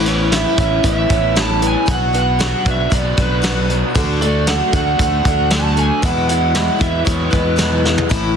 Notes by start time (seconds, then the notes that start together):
Already playing: A1 A2
0.06 B3 C#4 E4 C#5, closed hi-hat
0.32 A2 E3 B3 C#4 E4 E5, snare, closed hi-hat
0.58 A1 B3 C#4 E4 E5, kick, closed hi-hat
0.83 A1 E3 B3 C#4 E4 E5, kick, closed hi-hat
1.09 A1 B3 C#4 E4, kick, closed hi-hat
1.36 A2 E3 B3 C#4 E4, snare, closed hi-hat
1.41 A5
1.62 B3, closed hi-hat
1.67 G#5
1.86 B1 B2 F#3 B3 D4 F#4, kick, closed hi-hat
1.92 F#5
2.13 B3 D4 F#4, closed hi-hat
2.19 F#5
2.39 B2 F#3 B3 D4 F#4, snare, closed hi-hat
2.65 B1 B3 D4 F#4, kick, closed hi-hat
2.71 E5
2.90 B1 F#3 B3 D4 F#4, kick, closed hi-hat
2.95 D5
3.17 B1 B3 D4 F#4, kick, closed hi-hat
3.21 B4
3.42 B2 F#3 B3 D4 F#4, snare, closed hi-hat
3.70 B3, closed hi-hat
3.95 D2 D3 A3 D4 F#4, kick, closed hi-hat
4.21 A3 D4 F#4 D5, closed hi-hat
4.47 D3 A3 D4 F#4 F#5, snare, closed hi-hat
4.73 D2 D4 F#4 F#5, kick, closed hi-hat
4.77 A3
4.99 D2 D3 A3 D4 F#4 F#5, kick, closed hi-hat
5.25 D2 A3 D4 F#4, kick, closed hi-hat
5.50 D3 A3 D4 F#4 A5, snare, closed hi-hat
5.77 A3 G#5, closed hi-hat
6.02 E2 B2 F#3 G#3 B3 E4 F#5, kick, closed hi-hat
6.29 F#3 G#3 B3 E4 F#5, closed hi-hat
6.55 E2 B2 F#3 G#3 B3 E4, snare, closed hi-hat
6.78 E2 F#3 G#3 B3 E4 E5, kick, closed hi-hat
7.05 E2 F#3 G#3 B3 E4 C#5, kick, closed hi-hat
7.30 E2 F#3 G#3 B3 E4 B4, kick, closed hi-hat
7.56 E2 B2 F#3 G#3 B3 E4, snare, closed hi-hat
7.84 G#3, snare
7.98 floor tom
8.09 A1 A2 E3 B3 C#4 E4, kick, closed hi-hat